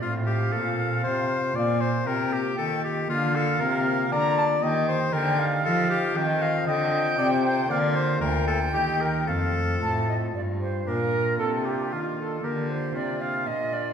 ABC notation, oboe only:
X:1
M:3/4
L:1/8
Q:1/4=117
K:Bb
V:1 name="Oboe"
F G A2 c2 | d c B G A G | F A B2 d2 | e c B z A G |
g f e2 d c | d c B A G B | A4 z2 | D F4- F |
G2 F4 |]